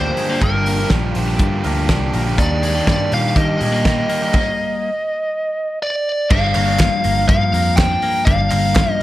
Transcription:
0.00 0.10 D2 medium
0.00 0.41 G2 medium
0.00 1.40 D3 medium
0.00 0.29 F3 medium
0.00 0.91 F3 soft
0.00 0.17 A#3 medium
0.00 0.30 A#3 medium
0.00 0.29 D4 medium
0.00 1.15 D4 medium
0.00 0.28 G4 medium
0.00 0.39 C5 medium
0.17 0.30 G#3 medium
0.17 open hi-hat medium
0.29 0.42 F3 soft
0.29 0.66 A#3 medium
0.29 0.43 A#3 soft
0.29 0.42 D4 soft
0.29 0.42 G4 medium
0.41 0.84 G1 medium
0.41 2.39 G2 medium
0.41 0.79 G2 medium
0.41 0.79 D3 medium
0.41 0.80 F3 medium
0.41 0.80 A#3 medium
0.41 0.79 D4 medium
0.41 0.78 G4 medium
0.41 0.88 A#4 medium
0.41 kick loud
0.41 closed hi-hat medium
0.66 1.64 A#3 medium
0.66 open hi-hat medium
0.79 1.14 F3 soft
0.79 1.15 A#3 soft
0.79 1.16 D4 soft
0.79 1.16 G4 soft
0.90 1.12 A#1 medium
0.90 2.44 F3 medium
0.90 kick medium
0.90 snare medium
0.90 closed hi-hat medium
1.15 1.37 A#1 medium
1.15 1.63 F3 medium
1.15 1.65 A#3 medium
1.15 1.28 C4 medium
1.15 1.66 D4 medium
1.15 1.67 G4 medium
1.15 open hi-hat medium
1.28 1.88 D4 medium
1.39 1.61 G2 loud
1.39 2.38 D3 medium
1.39 kick loud
1.39 closed hi-hat medium
1.64 1.90 D2 medium
1.64 1.88 F3 medium
1.64 2.14 A#3 medium
1.64 1.89 A#3 medium
1.64 1.90 D4 medium
1.64 1.91 G4 medium
1.64 open hi-hat medium
1.89 2.10 C2 medium
1.89 2.26 F3 medium
1.89 2.27 A#3 medium
1.89 2.66 D4 medium
1.89 2.25 D4 medium
1.89 2.24 G4 medium
1.89 kick medium
1.89 snare loud
1.89 closed hi-hat medium
2.13 2.35 A#1 medium
2.13 2.62 A#3 medium
2.13 open hi-hat medium
2.26 2.39 F3 soft
2.26 2.38 A#3 soft
2.26 2.38 D4 medium
2.26 2.38 G4 soft
2.38 2.80 D#2 loud
2.38 4.35 D#3 medium
2.38 2.75 D#3 medium
2.38 2.76 G3 medium
2.38 2.76 A#3 medium
2.38 2.76 D4 medium
2.38 2.74 G4 medium
2.38 2.87 D5 loud
2.38 kick loud
2.38 closed hi-hat medium
2.63 2.75 G#3 medium
2.63 open hi-hat medium
2.75 3.60 A#3 medium
2.75 3.11 A#3 soft
2.75 3.12 D4 soft
2.75 3.12 G4 soft
2.87 3.08 G2 medium
2.87 3.36 G3 medium
2.87 3.13 D5 loud
2.87 kick loud
2.87 snare loud
2.87 closed hi-hat medium
3.11 3.33 A#2 loud
3.11 3.60 G3 medium
3.11 3.61 A#3 medium
3.11 3.62 D4 medium
3.11 3.63 G4 medium
3.11 3.37 F5 medium
3.11 open hi-hat medium
3.36 3.57 D#3 loud
3.36 4.89 G3 medium
3.36 5.79 D#5 medium
3.36 kick loud
3.36 closed hi-hat medium
3.60 4.03 A#2 medium
3.60 3.84 G3 medium
3.60 3.72 G#3 medium
3.60 3.85 A#3 medium
3.60 3.86 D4 medium
3.60 3.87 G4 medium
3.60 open hi-hat medium
3.72 4.08 A#3 medium
3.85 4.22 G3 medium
3.85 4.23 A#3 medium
3.85 4.21 G4 medium
3.85 kick loud
3.85 snare medium
3.85 closed hi-hat medium
4.09 4.89 A#3 medium
4.09 open hi-hat medium
4.22 4.36 A#3 soft
4.22 4.35 D4 medium
4.22 4.35 G4 medium
4.33 kick loud
4.33 crash medium
5.83 6.31 D5 medium
6.30 6.52 G1 loud
6.30 8.25 G2 medium
6.30 7.77 D4 medium
6.30 7.25 F5 medium
6.30 kick loud
6.30 crash loud
6.55 6.87 G1 loud
6.55 7.04 A#3 medium
6.55 clap medium
6.55 open hi-hat medium
6.79 7.28 F3 medium
6.79 kick loud
6.79 snare loud
6.79 clap loud
6.79 closed hi-hat medium
7.04 7.26 G1 medium
7.04 7.53 A#3 medium
7.04 open hi-hat medium
7.28 7.50 G2 loud
7.28 8.74 F3 medium
7.28 7.79 F5 medium
7.28 kick loud
7.28 closed hi-hat medium
7.53 7.95 F2 medium
7.53 8.02 A#3 medium
7.53 open hi-hat medium
7.76 7.90 C4 medium
7.76 8.23 G5 loud
7.76 kick loud
7.76 snare loud
7.76 clap loud
7.76 closed hi-hat medium
7.90 8.26 D4 medium
8.02 8.50 A#3 medium
8.02 open hi-hat medium
8.25 8.48 G1 loud
8.25 9.03 G2 medium
8.25 9.03 D4 medium
8.25 8.92 F5 loud
8.25 kick loud
8.25 closed hi-hat medium
8.50 8.83 G1 loud
8.50 9.00 A#3 medium
8.50 clap medium
8.50 open hi-hat medium
8.75 9.03 F3 medium
8.75 kick loud
8.75 snare loud
8.75 clap loud
8.75 closed hi-hat medium
8.92 9.03 D#5 loud

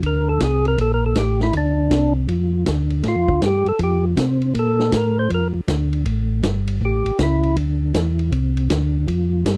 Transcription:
0.03 0.39 D2 medium
0.03 0.28 A#4 medium
0.03 kick soft
0.03 ride medium
0.29 0.41 A4 medium
0.40 0.77 C2 medium
0.40 kick soft
0.40 snare medium
0.40 hi-hat pedal medium
0.40 ride medium
0.44 0.66 G#4 medium
0.65 0.79 A#4 loud
0.65 ride soft
0.78 1.15 A#1 medium
0.78 0.92 A4 medium
0.78 kick soft
0.78 ride medium
0.94 1.04 A#4 medium
1.06 1.17 A4 medium
1.15 1.52 A1 loud
1.15 1.41 G4 medium
1.15 kick soft
1.15 snare medium
1.15 hi-hat pedal medium
1.15 ride medium
1.40 1.54 E4 medium
1.40 snare soft
1.53 1.90 D2 medium
1.53 kick soft
1.53 ride medium
1.57 2.13 D4 medium
1.91 2.27 C2 medium
1.91 kick soft
1.91 snare medium
1.91 hi-hat pedal medium
1.91 ride medium
2.28 2.65 F2 medium
2.28 kick soft
2.28 ride medium
2.66 3.03 D2 medium
2.66 kick soft
2.66 snare medium
2.66 hi-hat pedal medium
2.66 ride medium
2.90 ride soft
3.03 3.16 A2 medium
3.03 kick soft
3.03 snare soft
3.03 ride medium
3.08 3.41 F4 medium
3.16 3.29 F2 medium
3.28 3.40 D2 medium
3.28 kick medium
3.42 3.64 G2 medium
3.42 kick soft
3.42 snare medium
3.42 hi-hat pedal medium
3.42 ride medium
3.46 3.67 G4 medium
3.65 3.72 G2 soft
3.65 3.80 A4 loud
3.65 ride soft
3.79 4.16 F2 medium
3.79 kick soft
3.79 ride medium
3.83 4.05 G4 medium
4.17 4.53 C3 medium
4.17 kick soft
4.17 snare medium
4.17 hi-hat pedal medium
4.17 ride medium
4.42 ride soft
4.54 4.91 A#2 medium
4.54 kick soft
4.54 ride medium
4.59 4.92 A4 medium
4.79 snare soft
4.92 5.29 A2 medium
4.92 kick soft
4.92 snare medium
4.92 hi-hat pedal medium
4.92 ride medium
4.97 5.18 A#4 medium
5.19 5.31 C5 loud
5.30 5.53 F2 medium
5.30 kick soft
5.30 ride medium
5.34 5.48 A#4 medium
5.54 5.61 F2 soft
5.68 6.04 D2 medium
5.68 kick soft
5.68 snare medium
5.68 hi-hat pedal medium
5.68 ride medium
5.93 ride soft
6.05 6.42 A1 medium
6.05 kick soft
6.05 ride medium
6.43 6.80 G1 medium
6.43 kick soft
6.43 snare medium
6.43 hi-hat pedal medium
6.43 ride medium
6.67 ride medium
6.81 7.03 A1 medium
6.81 kick soft
6.85 7.18 G4 medium
7.05 7.12 A1 soft
7.05 ride soft
7.19 7.56 C#2 loud
7.19 kick soft
7.19 snare medium
7.19 hi-hat pedal medium
7.19 ride medium
7.23 7.56 E4 medium
7.43 ride soft
7.56 7.93 D2 medium
7.56 kick soft
7.56 ride medium
7.94 8.31 E2 medium
7.94 kick soft
7.94 snare medium
7.94 hi-hat pedal medium
7.94 ride medium
8.19 ride soft
8.32 8.69 C2 medium
8.32 kick soft
8.32 ride medium
8.57 ride medium
8.70 9.07 D2 loud
8.70 kick soft
8.70 snare medium
8.70 hi-hat pedal medium
8.70 ride medium
9.08 9.45 F2 medium
9.08 kick soft
9.08 ride medium
9.46 9.57 G2 medium
9.46 kick soft
9.46 snare medium
9.46 hi-hat pedal medium
9.46 ride medium

